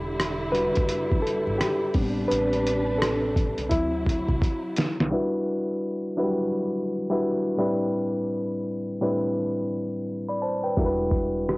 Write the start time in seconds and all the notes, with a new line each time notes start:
Already playing: E1 D3 G3 E4 G4
0.20 cross-stick, closed hi-hat
0.52 G3 D4 F#4 B4, closed hi-hat
0.75 F#1, kick, closed hi-hat
0.89 closed hi-hat
1.12 kick
1.22 A4
1.27 closed hi-hat
1.47 G1
1.58 G4, cross-stick, closed hi-hat
1.94 A1 C3 G3 B3 C4 D4 B4, kick, open hi-hat
2.28 A1 B4, closed hi-hat
2.53 closed hi-hat
2.67 closed hi-hat
2.98 A4, cross-stick
3.03 closed hi-hat
3.36 kick, closed hi-hat
3.58 B1, closed hi-hat
3.69 D2 F#3 C4 E4, kick, closed hi-hat
4.06 kick, closed hi-hat
4.29 C2, kick
4.42 kick, closed hi-hat
4.76 snare, closed hi-hat
5.00 B1, snare
5.11 G3 D4 E4 F#4 B4
6.17 F#3 D4 E4 F#4 B4
6.23 G3
7.10 G3 D4 E4 F#4 B4
7.57 A2 G3 C4 D4 E4 B4
9.01 A2 G3 C4 D4 E4 B4
10.29 D5 B5
10.42 C5 A5
10.64 B4 G5
10.77 E1 G3 D4 E4 F#4 A#4, kick, closed hi-hat
10.86 B4
11.11 kick, closed hi-hat
11.49 cross-stick, closed hi-hat